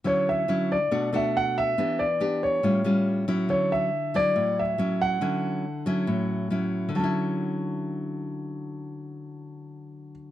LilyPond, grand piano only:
\new Staff \with { instrumentName = "Grand piano" } { \time 4/4 \key d \major \tempo 4 = 139 cis''8 e''4 d''4 e''8 fis''8 e''8~ | e''8 d''4 cis''2 r8 | cis''8 e''4 d''4 e''4 fis''8~ | fis''2. r4 |
a''1~ | a''1 | }